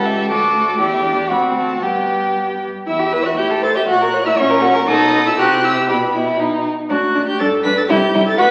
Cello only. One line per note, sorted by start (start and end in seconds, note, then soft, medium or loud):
0.00 0.31 C#2 medium
0.30 0.79 D2 medium
0.80 1.32 E2 medium
1.30 1.84 D2 medium
1.82 2.67 G2 soft
2.88 3.29 E2 medium
3.38 3.80 A2 medium
3.88 4.30 A#2 medium
4.38 4.79 A#2 medium
4.87 5.34 B2 medium
5.38 5.90 C3 medium
5.89 6.70 B2 medium
6.90 6.98 A2 medium
7.15 7.23 A2 medium
7.40 7.48 G2 medium
7.65 7.73 G2 medium
7.90 7.98 C2 medium
8.14 8.22 C2 medium
8.40 8.48 D2 medium